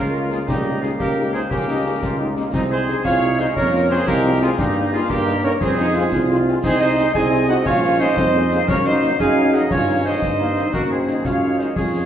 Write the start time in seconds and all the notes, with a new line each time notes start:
Already playing: C#2 A#3 F4 A#4
0.14 A#3 F4 G#4
0.30 G#3 A#3 F4 G#4, snare
0.47 C#2 G3 A#3 D#4 G4, concert bass drum, snare
0.65 A#3 D#4 G4
0.81 G#3 A#3 D#4 F4 G4 G#4, snare
0.99 C#2 A#3 G4 A#4, concert bass drum, snare
1.16 A#3 D#4 G4
1.33 A#3 C4 D#4 G4 G#4 C5, snare
1.50 C#2 A#3 C#4 G4 A#4, concert bass drum, snare
1.68 A#3 D#4 G4
1.85 A#3 C#4 D#4 G4
2.02 C#2 F4, concert bass drum, snare
2.19 A#3 D#4 G4
2.36 A#3 D#4 G4, snare
2.53 C2 G#3 C4 D#4 G#4, concert bass drum, snare, crash
2.70 G#3 C4 D#4 G#4 C5
2.87 G#3 D#4 G#4, snare
3.04 C2 G#3 F4 C#5 F5, concert bass drum, snare
3.21 G#3 D#4 G#4
3.38 G#3 D#4 G#4 C5 D#5, snare
3.56 F2 A#3 C#4 A#4 C#5, concert bass drum, snare
3.73 G#3 C4 F4
3.90 G#3 C4 F4 G#4 C5
4.07 C2 G#3 A#3 G4 A#4, concert bass drum, snare
4.24 G#3 C4 F4
4.41 G#3 C4 F4 G#4, snare
4.58 G2 G3 A#3 D#4 G4, concert bass drum, snare
4.75 G3 A#3 D#4
4.92 G3 G#3 A#3 D#4 F4 G#4, snare
5.10 G2 A#3 G4 A#4, concert bass drum, snare
5.27 G3 A#3 D#4
5.43 G3 A#3 C#4 D#4 A#4 C#5, snare
5.61 F2 C4 G#4 C5, concert bass drum, snare
5.78 G#3 C4 D#4 F4
5.95 G#3 C4 F4
6.12 C2, concert bass drum, snare
6.30 G#3 C4 F4
6.47 G#3 C4 F4
6.63 C2 C4 D#4 G#4 C5, concert bass drum, snare, crash
6.80 G#3 D#4 C5 D#5
6.98 G#3 D#4, snare
7.14 C2 C4 G#4 D#5 G#5, concert bass drum, snare
7.32 G#3 D#4
7.48 G#3 D#4 F#4 D#5 F#5, snare
7.65 A#1 C#4 F4 C#5 F5, concert bass drum, snare
7.83 G#3 A#3 C#4
7.99 G#3 A#3 C#4 D#4 C5 D#5
8.17 F2 C4, concert bass drum, snare
8.34 G#3 A#3 C#4
8.51 G#3 A#3 C#4, snare
8.68 F#2 A#3 C#4 A#4 C#5, concert bass drum, snare
8.85 F#3 A#3 D#4 C5 D#5
9.03 F#3 A#3 D#4, snare
9.19 F#2 D#4 G#4 F5 G#5, concert bass drum, snare
9.37 F#3 A#3 D#4
9.54 F#3 A#3 D#4 F#4 D#5 F#5, snare
9.70 G2 C#4 F4 C#5 F5, concert bass drum, snare
9.88 D#3 A#3 D#4
10.05 D#3 A#3 D#4 C5 D#5
10.22 G2 C4, concert bass drum, snare
10.40 D#3 A#3 D#4
10.56 D#3 A#3 C4 D#4, snare
10.73 F#2 A#3 F#4 A#4, concert bass drum, snare, crash
10.90 D#3 G#3 C4 D#4 G#4 C5
11.08 D#3 G#3 D#4, snare
11.24 F#2 G#3 F4 C#5 F5, concert bass drum, snare
11.42 D#3 G#3 D#4
11.59 D#3 G#3 D#4 C5 D#5, snare
11.76 F2 C#4 F4 G#4 C#5, concert bass drum, snare
11.93 F3 G#3 C#4